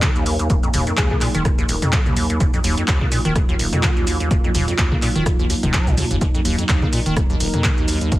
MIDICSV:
0, 0, Header, 1, 6, 480
1, 0, Start_track
1, 0, Key_signature, -6, "minor"
1, 0, Tempo, 476190
1, 503, Time_signature, 4, 2, 24, 8
1, 8259, End_track
2, 0, Start_track
2, 0, Title_t, "Synth pluck"
2, 0, Program_c, 0, 84
2, 983, Note_on_c, 0, 68, 89
2, 1069, Note_off_c, 0, 68, 0
2, 1117, Note_on_c, 0, 68, 77
2, 1185, Note_off_c, 0, 68, 0
2, 8259, End_track
3, 0, Start_track
3, 0, Title_t, "Analog synth pad"
3, 0, Program_c, 1, 89
3, 0, Note_on_c, 1, 54, 83
3, 0, Note_on_c, 1, 58, 73
3, 0, Note_on_c, 1, 63, 72
3, 0, Note_on_c, 1, 70, 87
3, 2411, Note_off_c, 1, 70, 0
3, 2422, Note_on_c, 1, 65, 89
3, 6251, Note_off_c, 1, 65, 0
3, 6263, Note_on_c, 1, 70, 83
3, 8259, Note_off_c, 1, 54, 0
3, 8259, Note_off_c, 1, 58, 0
3, 8259, Note_off_c, 1, 63, 0
3, 8259, Note_off_c, 1, 70, 0
3, 8259, End_track
4, 0, Start_track
4, 0, Title_t, "Acid bass"
4, 0, Program_c, 2, 38
4, 23, Note_on_c, 2, 51, 86
4, 97, Note_off_c, 2, 51, 0
4, 157, Note_on_c, 2, 39, 80
4, 244, Note_off_c, 2, 39, 0
4, 263, Note_on_c, 2, 39, 82
4, 374, Note_off_c, 2, 39, 0
4, 397, Note_on_c, 2, 39, 82
4, 484, Note_off_c, 2, 39, 0
4, 637, Note_on_c, 2, 41, 80
4, 695, Note_off_c, 2, 41, 0
4, 743, Note_on_c, 2, 39, 99
4, 854, Note_off_c, 2, 39, 0
4, 877, Note_on_c, 2, 41, 74
4, 935, Note_off_c, 2, 41, 0
4, 983, Note_on_c, 2, 39, 104
4, 1094, Note_off_c, 2, 39, 0
4, 1117, Note_on_c, 2, 49, 77
4, 1175, Note_off_c, 2, 49, 0
4, 1222, Note_on_c, 2, 46, 73
4, 1296, Note_off_c, 2, 46, 0
4, 1357, Note_on_c, 2, 51, 101
4, 1444, Note_off_c, 2, 51, 0
4, 1462, Note_on_c, 2, 39, 86
4, 1507, Note_off_c, 2, 39, 0
4, 1597, Note_on_c, 2, 39, 102
4, 1655, Note_off_c, 2, 39, 0
4, 1703, Note_on_c, 2, 27, 77
4, 1777, Note_off_c, 2, 27, 0
4, 1837, Note_on_c, 2, 41, 77
4, 1943, Note_on_c, 2, 51, 82
4, 1958, Note_off_c, 2, 41, 0
4, 2017, Note_off_c, 2, 51, 0
4, 2077, Note_on_c, 2, 39, 77
4, 2164, Note_off_c, 2, 39, 0
4, 2183, Note_on_c, 2, 39, 78
4, 2294, Note_off_c, 2, 39, 0
4, 2317, Note_on_c, 2, 39, 79
4, 2404, Note_off_c, 2, 39, 0
4, 2557, Note_on_c, 2, 41, 79
4, 2615, Note_off_c, 2, 41, 0
4, 2663, Note_on_c, 2, 39, 107
4, 2774, Note_off_c, 2, 39, 0
4, 2797, Note_on_c, 2, 41, 82
4, 2855, Note_off_c, 2, 41, 0
4, 2903, Note_on_c, 2, 39, 103
4, 3014, Note_off_c, 2, 39, 0
4, 3037, Note_on_c, 2, 49, 73
4, 3095, Note_off_c, 2, 49, 0
4, 3142, Note_on_c, 2, 46, 73
4, 3217, Note_off_c, 2, 46, 0
4, 3277, Note_on_c, 2, 51, 100
4, 3364, Note_off_c, 2, 51, 0
4, 3382, Note_on_c, 2, 39, 88
4, 3427, Note_off_c, 2, 39, 0
4, 3517, Note_on_c, 2, 39, 99
4, 3575, Note_off_c, 2, 39, 0
4, 3622, Note_on_c, 2, 27, 80
4, 3696, Note_off_c, 2, 27, 0
4, 3757, Note_on_c, 2, 41, 78
4, 3862, Note_on_c, 2, 51, 85
4, 3877, Note_off_c, 2, 41, 0
4, 3936, Note_off_c, 2, 51, 0
4, 3997, Note_on_c, 2, 39, 76
4, 4084, Note_off_c, 2, 39, 0
4, 4102, Note_on_c, 2, 39, 76
4, 4213, Note_off_c, 2, 39, 0
4, 4237, Note_on_c, 2, 39, 78
4, 4324, Note_off_c, 2, 39, 0
4, 4342, Note_on_c, 2, 39, 87
4, 4387, Note_off_c, 2, 39, 0
4, 4477, Note_on_c, 2, 41, 82
4, 4535, Note_off_c, 2, 41, 0
4, 4583, Note_on_c, 2, 39, 102
4, 4694, Note_off_c, 2, 39, 0
4, 4717, Note_on_c, 2, 41, 78
4, 4775, Note_off_c, 2, 41, 0
4, 4822, Note_on_c, 2, 39, 101
4, 4933, Note_off_c, 2, 39, 0
4, 4957, Note_on_c, 2, 49, 75
4, 5015, Note_off_c, 2, 49, 0
4, 5062, Note_on_c, 2, 46, 77
4, 5136, Note_off_c, 2, 46, 0
4, 5197, Note_on_c, 2, 51, 104
4, 5284, Note_off_c, 2, 51, 0
4, 5302, Note_on_c, 2, 39, 89
4, 5347, Note_off_c, 2, 39, 0
4, 5436, Note_on_c, 2, 39, 98
4, 5495, Note_off_c, 2, 39, 0
4, 5541, Note_on_c, 2, 39, 104
4, 5586, Note_off_c, 2, 39, 0
4, 5677, Note_on_c, 2, 37, 79
4, 5782, Note_on_c, 2, 54, 82
4, 5797, Note_off_c, 2, 37, 0
4, 5916, Note_on_c, 2, 46, 98
4, 5931, Note_off_c, 2, 54, 0
4, 6004, Note_off_c, 2, 46, 0
4, 6022, Note_on_c, 2, 39, 108
4, 6096, Note_off_c, 2, 39, 0
4, 6156, Note_on_c, 2, 39, 105
4, 6215, Note_off_c, 2, 39, 0
4, 6262, Note_on_c, 2, 39, 90
4, 6307, Note_off_c, 2, 39, 0
4, 6396, Note_on_c, 2, 41, 79
4, 6455, Note_off_c, 2, 41, 0
4, 6502, Note_on_c, 2, 39, 101
4, 6613, Note_off_c, 2, 39, 0
4, 6637, Note_on_c, 2, 41, 77
4, 6695, Note_off_c, 2, 41, 0
4, 6742, Note_on_c, 2, 39, 102
4, 6853, Note_off_c, 2, 39, 0
4, 6877, Note_on_c, 2, 49, 76
4, 6935, Note_off_c, 2, 49, 0
4, 6982, Note_on_c, 2, 46, 75
4, 7056, Note_off_c, 2, 46, 0
4, 7117, Note_on_c, 2, 51, 101
4, 7204, Note_off_c, 2, 51, 0
4, 7222, Note_on_c, 2, 39, 89
4, 7267, Note_off_c, 2, 39, 0
4, 7357, Note_on_c, 2, 39, 98
4, 7415, Note_off_c, 2, 39, 0
4, 7462, Note_on_c, 2, 27, 79
4, 7536, Note_off_c, 2, 27, 0
4, 7597, Note_on_c, 2, 41, 78
4, 7702, Note_on_c, 2, 51, 84
4, 7717, Note_off_c, 2, 41, 0
4, 7776, Note_off_c, 2, 51, 0
4, 7837, Note_on_c, 2, 39, 76
4, 7924, Note_off_c, 2, 39, 0
4, 7942, Note_on_c, 2, 39, 78
4, 8053, Note_off_c, 2, 39, 0
4, 8077, Note_on_c, 2, 39, 74
4, 8164, Note_off_c, 2, 39, 0
4, 8259, End_track
5, 0, Start_track
5, 0, Title_t, "Analog synth bass"
5, 0, Program_c, 3, 38
5, 502, Note_on_c, 3, 27, 95
5, 591, Note_off_c, 3, 27, 0
5, 742, Note_on_c, 3, 27, 76
5, 831, Note_off_c, 3, 27, 0
5, 1357, Note_on_c, 3, 27, 85
5, 1645, Note_off_c, 3, 27, 0
5, 1703, Note_on_c, 3, 27, 91
5, 1791, Note_off_c, 3, 27, 0
5, 2423, Note_on_c, 3, 27, 95
5, 2511, Note_off_c, 3, 27, 0
5, 2662, Note_on_c, 3, 27, 76
5, 2751, Note_off_c, 3, 27, 0
5, 3277, Note_on_c, 3, 27, 85
5, 3565, Note_off_c, 3, 27, 0
5, 3623, Note_on_c, 3, 27, 91
5, 3711, Note_off_c, 3, 27, 0
5, 4343, Note_on_c, 3, 27, 99
5, 4431, Note_off_c, 3, 27, 0
5, 4583, Note_on_c, 3, 27, 82
5, 4671, Note_off_c, 3, 27, 0
5, 5197, Note_on_c, 3, 27, 82
5, 5485, Note_off_c, 3, 27, 0
5, 5678, Note_on_c, 3, 27, 83
5, 5825, Note_off_c, 3, 27, 0
5, 5917, Note_on_c, 3, 37, 90
5, 5987, Note_off_c, 3, 37, 0
5, 6157, Note_on_c, 3, 30, 105
5, 6227, Note_off_c, 3, 30, 0
5, 6263, Note_on_c, 3, 27, 96
5, 6351, Note_off_c, 3, 27, 0
5, 6503, Note_on_c, 3, 27, 79
5, 6591, Note_off_c, 3, 27, 0
5, 7118, Note_on_c, 3, 27, 87
5, 7405, Note_off_c, 3, 27, 0
5, 7463, Note_on_c, 3, 27, 86
5, 7551, Note_off_c, 3, 27, 0
5, 8183, Note_on_c, 3, 27, 97
5, 8259, Note_off_c, 3, 27, 0
5, 8259, End_track
6, 0, Start_track
6, 0, Title_t, "Drums"
6, 20, Note_on_c, 9, 39, 123
6, 22, Note_on_c, 9, 36, 112
6, 23, Note_on_c, 9, 42, 55
6, 23, Note_on_c, 9, 82, 45
6, 121, Note_off_c, 9, 39, 0
6, 123, Note_off_c, 9, 36, 0
6, 123, Note_off_c, 9, 42, 0
6, 123, Note_off_c, 9, 82, 0
6, 157, Note_on_c, 9, 82, 31
6, 258, Note_off_c, 9, 82, 0
6, 262, Note_on_c, 9, 46, 110
6, 262, Note_on_c, 9, 82, 77
6, 363, Note_off_c, 9, 46, 0
6, 363, Note_off_c, 9, 82, 0
6, 397, Note_on_c, 9, 42, 73
6, 397, Note_on_c, 9, 82, 34
6, 498, Note_off_c, 9, 42, 0
6, 498, Note_off_c, 9, 82, 0
6, 502, Note_on_c, 9, 36, 123
6, 502, Note_on_c, 9, 42, 56
6, 502, Note_on_c, 9, 82, 44
6, 603, Note_off_c, 9, 36, 0
6, 603, Note_off_c, 9, 42, 0
6, 603, Note_off_c, 9, 82, 0
6, 637, Note_on_c, 9, 82, 31
6, 738, Note_off_c, 9, 82, 0
6, 743, Note_on_c, 9, 46, 116
6, 743, Note_on_c, 9, 47, 84
6, 743, Note_on_c, 9, 82, 76
6, 843, Note_off_c, 9, 46, 0
6, 843, Note_off_c, 9, 47, 0
6, 843, Note_off_c, 9, 82, 0
6, 877, Note_on_c, 9, 42, 68
6, 877, Note_on_c, 9, 82, 34
6, 978, Note_off_c, 9, 42, 0
6, 978, Note_off_c, 9, 82, 0
6, 980, Note_on_c, 9, 39, 122
6, 982, Note_on_c, 9, 42, 51
6, 982, Note_on_c, 9, 82, 44
6, 983, Note_on_c, 9, 36, 122
6, 1081, Note_off_c, 9, 39, 0
6, 1083, Note_off_c, 9, 36, 0
6, 1083, Note_off_c, 9, 42, 0
6, 1083, Note_off_c, 9, 82, 0
6, 1117, Note_on_c, 9, 36, 63
6, 1218, Note_off_c, 9, 36, 0
6, 1220, Note_on_c, 9, 39, 39
6, 1222, Note_on_c, 9, 46, 111
6, 1222, Note_on_c, 9, 82, 76
6, 1321, Note_off_c, 9, 39, 0
6, 1323, Note_off_c, 9, 46, 0
6, 1323, Note_off_c, 9, 82, 0
6, 1356, Note_on_c, 9, 42, 68
6, 1356, Note_on_c, 9, 82, 34
6, 1457, Note_off_c, 9, 42, 0
6, 1457, Note_off_c, 9, 82, 0
6, 1462, Note_on_c, 9, 37, 64
6, 1462, Note_on_c, 9, 42, 53
6, 1462, Note_on_c, 9, 82, 44
6, 1463, Note_on_c, 9, 36, 125
6, 1563, Note_off_c, 9, 36, 0
6, 1563, Note_off_c, 9, 37, 0
6, 1563, Note_off_c, 9, 42, 0
6, 1563, Note_off_c, 9, 82, 0
6, 1596, Note_on_c, 9, 82, 30
6, 1697, Note_off_c, 9, 82, 0
6, 1702, Note_on_c, 9, 46, 113
6, 1702, Note_on_c, 9, 82, 75
6, 1803, Note_off_c, 9, 46, 0
6, 1803, Note_off_c, 9, 82, 0
6, 1837, Note_on_c, 9, 42, 68
6, 1837, Note_on_c, 9, 47, 97
6, 1837, Note_on_c, 9, 82, 35
6, 1938, Note_off_c, 9, 42, 0
6, 1938, Note_off_c, 9, 47, 0
6, 1938, Note_off_c, 9, 82, 0
6, 1940, Note_on_c, 9, 39, 120
6, 1942, Note_on_c, 9, 42, 53
6, 1942, Note_on_c, 9, 82, 44
6, 1943, Note_on_c, 9, 36, 122
6, 2041, Note_off_c, 9, 39, 0
6, 2043, Note_off_c, 9, 36, 0
6, 2043, Note_off_c, 9, 42, 0
6, 2043, Note_off_c, 9, 82, 0
6, 2077, Note_on_c, 9, 47, 93
6, 2077, Note_on_c, 9, 82, 31
6, 2178, Note_off_c, 9, 47, 0
6, 2178, Note_off_c, 9, 82, 0
6, 2183, Note_on_c, 9, 46, 108
6, 2183, Note_on_c, 9, 82, 78
6, 2283, Note_off_c, 9, 46, 0
6, 2284, Note_off_c, 9, 82, 0
6, 2317, Note_on_c, 9, 42, 67
6, 2317, Note_on_c, 9, 82, 34
6, 2418, Note_off_c, 9, 42, 0
6, 2418, Note_off_c, 9, 82, 0
6, 2422, Note_on_c, 9, 42, 56
6, 2422, Note_on_c, 9, 82, 45
6, 2423, Note_on_c, 9, 36, 127
6, 2523, Note_off_c, 9, 36, 0
6, 2523, Note_off_c, 9, 42, 0
6, 2523, Note_off_c, 9, 82, 0
6, 2557, Note_on_c, 9, 82, 29
6, 2658, Note_off_c, 9, 82, 0
6, 2663, Note_on_c, 9, 46, 113
6, 2663, Note_on_c, 9, 82, 75
6, 2763, Note_off_c, 9, 46, 0
6, 2763, Note_off_c, 9, 82, 0
6, 2797, Note_on_c, 9, 42, 66
6, 2797, Note_on_c, 9, 82, 33
6, 2898, Note_off_c, 9, 42, 0
6, 2898, Note_off_c, 9, 82, 0
6, 2900, Note_on_c, 9, 39, 119
6, 2902, Note_on_c, 9, 42, 50
6, 2902, Note_on_c, 9, 82, 42
6, 2903, Note_on_c, 9, 36, 120
6, 3001, Note_off_c, 9, 39, 0
6, 3003, Note_off_c, 9, 36, 0
6, 3003, Note_off_c, 9, 42, 0
6, 3003, Note_off_c, 9, 82, 0
6, 3037, Note_on_c, 9, 36, 64
6, 3138, Note_off_c, 9, 36, 0
6, 3142, Note_on_c, 9, 46, 113
6, 3143, Note_on_c, 9, 82, 78
6, 3243, Note_off_c, 9, 46, 0
6, 3243, Note_off_c, 9, 82, 0
6, 3277, Note_on_c, 9, 42, 65
6, 3277, Note_on_c, 9, 82, 33
6, 3378, Note_off_c, 9, 42, 0
6, 3378, Note_off_c, 9, 82, 0
6, 3383, Note_on_c, 9, 36, 126
6, 3383, Note_on_c, 9, 37, 66
6, 3383, Note_on_c, 9, 42, 51
6, 3383, Note_on_c, 9, 82, 43
6, 3483, Note_off_c, 9, 36, 0
6, 3483, Note_off_c, 9, 37, 0
6, 3483, Note_off_c, 9, 42, 0
6, 3483, Note_off_c, 9, 82, 0
6, 3517, Note_on_c, 9, 82, 31
6, 3618, Note_off_c, 9, 82, 0
6, 3623, Note_on_c, 9, 46, 112
6, 3623, Note_on_c, 9, 82, 71
6, 3723, Note_off_c, 9, 46, 0
6, 3723, Note_off_c, 9, 82, 0
6, 3757, Note_on_c, 9, 42, 67
6, 3757, Note_on_c, 9, 47, 94
6, 3757, Note_on_c, 9, 82, 33
6, 3858, Note_off_c, 9, 42, 0
6, 3858, Note_off_c, 9, 47, 0
6, 3858, Note_off_c, 9, 82, 0
6, 3861, Note_on_c, 9, 39, 122
6, 3863, Note_on_c, 9, 36, 127
6, 3863, Note_on_c, 9, 42, 53
6, 3863, Note_on_c, 9, 82, 42
6, 3961, Note_off_c, 9, 39, 0
6, 3963, Note_off_c, 9, 36, 0
6, 3964, Note_off_c, 9, 42, 0
6, 3964, Note_off_c, 9, 82, 0
6, 3997, Note_on_c, 9, 82, 32
6, 4098, Note_off_c, 9, 82, 0
6, 4103, Note_on_c, 9, 46, 110
6, 4103, Note_on_c, 9, 82, 75
6, 4204, Note_off_c, 9, 46, 0
6, 4204, Note_off_c, 9, 82, 0
6, 4237, Note_on_c, 9, 42, 64
6, 4237, Note_on_c, 9, 82, 32
6, 4338, Note_off_c, 9, 42, 0
6, 4338, Note_off_c, 9, 82, 0
6, 4343, Note_on_c, 9, 36, 127
6, 4343, Note_on_c, 9, 42, 52
6, 4343, Note_on_c, 9, 82, 46
6, 4444, Note_off_c, 9, 36, 0
6, 4444, Note_off_c, 9, 42, 0
6, 4444, Note_off_c, 9, 82, 0
6, 4477, Note_on_c, 9, 82, 31
6, 4578, Note_off_c, 9, 82, 0
6, 4583, Note_on_c, 9, 46, 109
6, 4583, Note_on_c, 9, 47, 94
6, 4583, Note_on_c, 9, 82, 80
6, 4684, Note_off_c, 9, 46, 0
6, 4684, Note_off_c, 9, 47, 0
6, 4684, Note_off_c, 9, 82, 0
6, 4718, Note_on_c, 9, 42, 64
6, 4718, Note_on_c, 9, 82, 35
6, 4818, Note_off_c, 9, 42, 0
6, 4818, Note_off_c, 9, 82, 0
6, 4821, Note_on_c, 9, 39, 114
6, 4823, Note_on_c, 9, 36, 124
6, 4823, Note_on_c, 9, 42, 49
6, 4823, Note_on_c, 9, 82, 43
6, 4921, Note_off_c, 9, 39, 0
6, 4924, Note_off_c, 9, 36, 0
6, 4924, Note_off_c, 9, 42, 0
6, 4924, Note_off_c, 9, 82, 0
6, 4957, Note_on_c, 9, 36, 65
6, 5058, Note_off_c, 9, 36, 0
6, 5061, Note_on_c, 9, 39, 36
6, 5063, Note_on_c, 9, 46, 110
6, 5063, Note_on_c, 9, 82, 76
6, 5162, Note_off_c, 9, 39, 0
6, 5164, Note_off_c, 9, 46, 0
6, 5164, Note_off_c, 9, 82, 0
6, 5197, Note_on_c, 9, 42, 61
6, 5197, Note_on_c, 9, 82, 34
6, 5298, Note_off_c, 9, 42, 0
6, 5298, Note_off_c, 9, 82, 0
6, 5303, Note_on_c, 9, 36, 123
6, 5303, Note_on_c, 9, 37, 67
6, 5303, Note_on_c, 9, 42, 50
6, 5303, Note_on_c, 9, 82, 44
6, 5404, Note_off_c, 9, 36, 0
6, 5404, Note_off_c, 9, 37, 0
6, 5404, Note_off_c, 9, 42, 0
6, 5404, Note_off_c, 9, 82, 0
6, 5438, Note_on_c, 9, 82, 30
6, 5538, Note_off_c, 9, 82, 0
6, 5543, Note_on_c, 9, 46, 104
6, 5543, Note_on_c, 9, 82, 80
6, 5644, Note_off_c, 9, 46, 0
6, 5644, Note_off_c, 9, 82, 0
6, 5677, Note_on_c, 9, 42, 61
6, 5677, Note_on_c, 9, 47, 97
6, 5677, Note_on_c, 9, 82, 34
6, 5778, Note_off_c, 9, 42, 0
6, 5778, Note_off_c, 9, 47, 0
6, 5778, Note_off_c, 9, 82, 0
6, 5781, Note_on_c, 9, 39, 120
6, 5783, Note_on_c, 9, 36, 117
6, 5783, Note_on_c, 9, 42, 48
6, 5783, Note_on_c, 9, 82, 44
6, 5881, Note_off_c, 9, 39, 0
6, 5884, Note_off_c, 9, 36, 0
6, 5884, Note_off_c, 9, 42, 0
6, 5884, Note_off_c, 9, 82, 0
6, 5917, Note_on_c, 9, 47, 98
6, 5917, Note_on_c, 9, 82, 32
6, 6018, Note_off_c, 9, 47, 0
6, 6018, Note_off_c, 9, 82, 0
6, 6023, Note_on_c, 9, 46, 112
6, 6023, Note_on_c, 9, 47, 89
6, 6023, Note_on_c, 9, 82, 77
6, 6124, Note_off_c, 9, 46, 0
6, 6124, Note_off_c, 9, 47, 0
6, 6124, Note_off_c, 9, 82, 0
6, 6157, Note_on_c, 9, 42, 62
6, 6157, Note_on_c, 9, 82, 32
6, 6258, Note_off_c, 9, 42, 0
6, 6258, Note_off_c, 9, 82, 0
6, 6263, Note_on_c, 9, 36, 122
6, 6263, Note_on_c, 9, 42, 53
6, 6263, Note_on_c, 9, 82, 48
6, 6364, Note_off_c, 9, 36, 0
6, 6364, Note_off_c, 9, 42, 0
6, 6364, Note_off_c, 9, 82, 0
6, 6397, Note_on_c, 9, 82, 33
6, 6498, Note_off_c, 9, 82, 0
6, 6503, Note_on_c, 9, 46, 106
6, 6503, Note_on_c, 9, 82, 81
6, 6603, Note_off_c, 9, 46, 0
6, 6604, Note_off_c, 9, 82, 0
6, 6637, Note_on_c, 9, 42, 67
6, 6637, Note_on_c, 9, 82, 34
6, 6738, Note_off_c, 9, 42, 0
6, 6738, Note_off_c, 9, 82, 0
6, 6740, Note_on_c, 9, 39, 113
6, 6742, Note_on_c, 9, 42, 49
6, 6742, Note_on_c, 9, 82, 43
6, 6743, Note_on_c, 9, 36, 119
6, 6841, Note_off_c, 9, 39, 0
6, 6843, Note_off_c, 9, 42, 0
6, 6843, Note_off_c, 9, 82, 0
6, 6844, Note_off_c, 9, 36, 0
6, 6877, Note_on_c, 9, 36, 61
6, 6978, Note_off_c, 9, 36, 0
6, 6983, Note_on_c, 9, 46, 109
6, 6983, Note_on_c, 9, 82, 82
6, 7083, Note_off_c, 9, 46, 0
6, 7083, Note_off_c, 9, 82, 0
6, 7117, Note_on_c, 9, 42, 64
6, 7117, Note_on_c, 9, 82, 34
6, 7218, Note_off_c, 9, 42, 0
6, 7218, Note_off_c, 9, 82, 0
6, 7223, Note_on_c, 9, 36, 117
6, 7223, Note_on_c, 9, 37, 69
6, 7223, Note_on_c, 9, 42, 51
6, 7223, Note_on_c, 9, 82, 46
6, 7324, Note_off_c, 9, 36, 0
6, 7324, Note_off_c, 9, 37, 0
6, 7324, Note_off_c, 9, 42, 0
6, 7324, Note_off_c, 9, 82, 0
6, 7357, Note_on_c, 9, 82, 31
6, 7458, Note_off_c, 9, 82, 0
6, 7463, Note_on_c, 9, 46, 107
6, 7463, Note_on_c, 9, 82, 78
6, 7564, Note_off_c, 9, 46, 0
6, 7564, Note_off_c, 9, 82, 0
6, 7597, Note_on_c, 9, 42, 64
6, 7597, Note_on_c, 9, 47, 99
6, 7597, Note_on_c, 9, 82, 34
6, 7698, Note_off_c, 9, 42, 0
6, 7698, Note_off_c, 9, 47, 0
6, 7698, Note_off_c, 9, 82, 0
6, 7701, Note_on_c, 9, 39, 116
6, 7703, Note_on_c, 9, 36, 120
6, 7703, Note_on_c, 9, 42, 51
6, 7703, Note_on_c, 9, 82, 45
6, 7801, Note_off_c, 9, 39, 0
6, 7803, Note_off_c, 9, 42, 0
6, 7804, Note_off_c, 9, 36, 0
6, 7804, Note_off_c, 9, 82, 0
6, 7837, Note_on_c, 9, 82, 34
6, 7938, Note_off_c, 9, 82, 0
6, 7943, Note_on_c, 9, 46, 106
6, 7943, Note_on_c, 9, 82, 83
6, 8043, Note_off_c, 9, 46, 0
6, 8043, Note_off_c, 9, 82, 0
6, 8078, Note_on_c, 9, 42, 64
6, 8078, Note_on_c, 9, 82, 35
6, 8178, Note_off_c, 9, 42, 0
6, 8178, Note_off_c, 9, 82, 0
6, 8183, Note_on_c, 9, 36, 114
6, 8183, Note_on_c, 9, 42, 53
6, 8183, Note_on_c, 9, 82, 46
6, 8259, Note_off_c, 9, 36, 0
6, 8259, Note_off_c, 9, 42, 0
6, 8259, Note_off_c, 9, 82, 0
6, 8259, End_track
0, 0, End_of_file